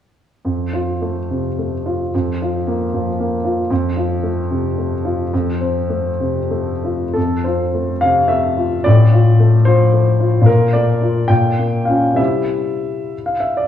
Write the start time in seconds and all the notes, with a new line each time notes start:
0.44 F2
0.73 F4
1.02 A3
1.30 C3
1.59 A3
1.86 F4
2.14 F2
2.42 F4
2.67 A#3
2.94 F3
3.20 A#3
3.45 F4
3.70 F2
3.97 F4
4.24 A3
4.51 C3
4.78 A3
5.05 F4
5.34 F2
5.61 C4
5.90 A3
6.20 C3
6.51 A3
6.84 F4
7.13 F2 A4
7.44 F4 C5
7.74 A3
8.01 C3 F5
8.28 A3 E5
8.57 F4
8.84 A2 D5
9.12 F4
9.40 A3
9.65 F3 C5
9.93 A3
10.20 F4
10.42 A#2
10.46 A#4
10.73 A3 D5
11.02 F4
11.28 A#2 G5
11.59 A#3
11.85 C#4 F4 F5
12.13 C3 G3 C4 E5
12.17 E4
13.26 F5
13.40 E5
13.57 D5